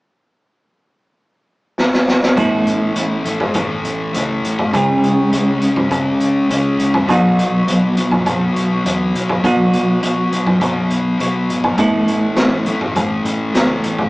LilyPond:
<<
  \new Staff \with { instrumentName = "Overdriven electric guitar" } { \time 4/4 \key a \lydian \tempo 4 = 102 r1 | <a b e' a'>1 | <cis gis cis' eis' gis'>1 | <b, fis b dis' fis'>1 |
<b, fis b dis' fis'>1 | <a b e' a'>1 | }
  \new Staff \with { instrumentName = "Distorted electric guitar" } { \clef bass \time 4/4 \key a \lydian r1 | <a, e a>4 <a, e a>8 <e a>8 <a, e a>4 <a, e a>4 | <cis gis cis'>4 <cis gis cis'>8 <gis cis'>8 <cis gis cis'>4 <cis gis cis'>4 | <b, fis b>4 <b, fis b>8 <fis b>8 <b, fis b>4 <b, fis b>4 |
<b, fis b>4 <b, fis b>8 <fis b>8 <b, fis b>4 <b, fis b>4 | <a, e a>4 <a, e a>8 <e a>8 <a, e a>4 <a, e a>4 | }
  \new Staff \with { instrumentName = "Fingered electric bass" } { \clef bass \time 4/4 \key a \lydian r1 | a,,8 a,,8 a,,8 a,,8 a,,8 a,,8 cis,8 a,,8 | cis,8 cis,8 cis,4 cis,4 cis,8 cis,8 | b,,8 b,,8 b,,8 b,,8 b,,8 b,,8 e,8 b,,8 |
b,,8 b,,8 b,,4 b,,4 b,,8 gis,,8 | a,,8 a,,8 a,,8 a,,8 a,,8 a,,8 cis,8 a,,8 | }
  \new DrumStaff \with { instrumentName = "Drums" } \drummode { \time 4/4 r4 r4 r4 sn16 sn16 sn16 sn16 | <hh bd>8 hh8 hh8 hh16 bd16 <hh bd>8 hh8 hh8 hh16 bd16 | <hh bd>8 hh8 hh8 hh16 bd16 <hh bd>8 hh8 hh8 hh16 bd16 | <hh bd>8 hh8 hh8 hh16 bd16 <hh bd>8 hh8 hh8 hh16 bd16 |
<hh bd>8 hh8 hh8 hh16 bd16 <hh bd>8 hh8 hh8 hh16 bd16 | <hh bd>8 hh8 <hh sn>8 hh16 bd16 <hh bd>8 hh8 <hh sn>8 hh16 bd16 | }
>>